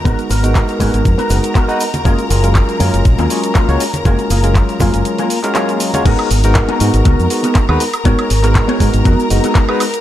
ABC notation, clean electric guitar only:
X:1
M:4/4
L:1/16
Q:"Swing 16ths" 1/4=120
K:G#dor
V:1 name="Clean electric guitar"
[B,FA] z [B,FA]2 z2 [B,FG]2 z [B,FA] z2 [B,FA]2 z2 | [A,EG] z [A,EG]2 z2 [A,EG]2 z [A,EG] z2 [A,EA]2 z2 | [A,EG] z [A,EG]2 z2 [A,EG]2 z [A,EG] z2 [A,EG]2 z2 | [B,FGA]2 z3 [B,FGA] z2 [B,FGA]2 z [B,FGA] z4 |
[B,FGc]2 z3 [B,FGc] z2 [B,FGA]2 z [B,FGA] z4 |]